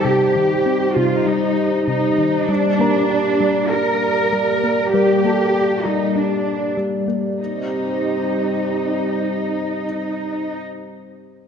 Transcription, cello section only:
0, 0, Header, 1, 2, 480
1, 0, Start_track
1, 0, Tempo, 612245
1, 31, Time_signature, 4, 2, 24, 8
1, 8999, End_track
2, 0, Start_track
2, 0, Title_t, "Cello section"
2, 0, Program_c, 0, 48
2, 40, Note_on_c, 0, 67, 52
2, 753, Note_on_c, 0, 65, 53
2, 755, Note_off_c, 0, 67, 0
2, 992, Note_off_c, 0, 65, 0
2, 993, Note_on_c, 0, 63, 53
2, 1461, Note_off_c, 0, 63, 0
2, 1471, Note_on_c, 0, 63, 58
2, 1941, Note_off_c, 0, 63, 0
2, 1954, Note_on_c, 0, 62, 67
2, 2912, Note_off_c, 0, 62, 0
2, 2914, Note_on_c, 0, 70, 64
2, 3871, Note_on_c, 0, 67, 64
2, 3872, Note_off_c, 0, 70, 0
2, 4576, Note_off_c, 0, 67, 0
2, 4594, Note_on_c, 0, 63, 53
2, 4831, Note_on_c, 0, 62, 40
2, 4832, Note_off_c, 0, 63, 0
2, 5311, Note_off_c, 0, 62, 0
2, 5795, Note_on_c, 0, 63, 38
2, 8308, Note_off_c, 0, 63, 0
2, 8999, End_track
0, 0, End_of_file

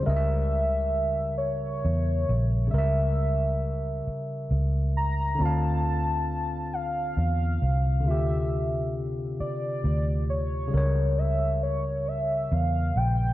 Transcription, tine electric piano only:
0, 0, Header, 1, 2, 480
1, 0, Start_track
1, 0, Tempo, 888889
1, 28, Time_signature, 6, 3, 24, 8
1, 7200, End_track
2, 0, Start_track
2, 0, Title_t, "Tine electric piano"
2, 0, Program_c, 0, 4
2, 0, Control_c, 0, 64, 127
2, 0, Note_on_c, 0, 49, 70
2, 14, Note_on_c, 0, 55, 69
2, 32, Note_on_c, 0, 70, 71
2, 35, Control_c, 0, 64, 0
2, 50, Note_on_c, 0, 75, 61
2, 74, Note_off_c, 0, 75, 0
2, 88, Note_on_c, 0, 76, 76
2, 128, Control_c, 0, 64, 127
2, 1430, Note_off_c, 0, 49, 0
2, 1439, Note_off_c, 0, 55, 0
2, 1444, Note_on_c, 0, 49, 76
2, 1448, Note_off_c, 0, 70, 0
2, 1464, Note_on_c, 0, 55, 60
2, 1476, Note_off_c, 0, 76, 0
2, 1482, Note_on_c, 0, 70, 64
2, 1504, Note_on_c, 0, 76, 76
2, 2874, Note_off_c, 0, 49, 0
2, 2884, Note_off_c, 0, 55, 0
2, 2887, Note_on_c, 0, 50, 67
2, 2893, Note_off_c, 0, 70, 0
2, 2904, Note_off_c, 0, 76, 0
2, 2907, Note_on_c, 0, 60, 61
2, 2915, Control_c, 0, 64, 0
2, 2923, Note_on_c, 0, 65, 61
2, 2945, Note_on_c, 0, 77, 76
2, 2994, Control_c, 0, 64, 127
2, 4316, Note_off_c, 0, 50, 0
2, 4322, Note_on_c, 0, 50, 71
2, 4326, Note_off_c, 0, 60, 0
2, 4334, Note_off_c, 0, 65, 0
2, 4342, Note_on_c, 0, 48, 61
2, 4345, Note_off_c, 0, 77, 0
2, 4360, Note_on_c, 0, 65, 58
2, 4378, Note_on_c, 0, 67, 72
2, 5753, Note_off_c, 0, 50, 0
2, 5763, Note_off_c, 0, 48, 0
2, 5765, Note_on_c, 0, 49, 75
2, 5772, Note_off_c, 0, 65, 0
2, 5778, Note_on_c, 0, 55, 59
2, 5782, Note_off_c, 0, 67, 0
2, 5795, Control_c, 0, 64, 0
2, 5800, Note_on_c, 0, 70, 58
2, 5818, Note_on_c, 0, 73, 75
2, 5875, Control_c, 0, 64, 127
2, 7195, Note_off_c, 0, 49, 0
2, 7200, Note_off_c, 0, 55, 0
2, 7200, Note_off_c, 0, 70, 0
2, 7200, Note_off_c, 0, 73, 0
2, 7200, End_track
0, 0, End_of_file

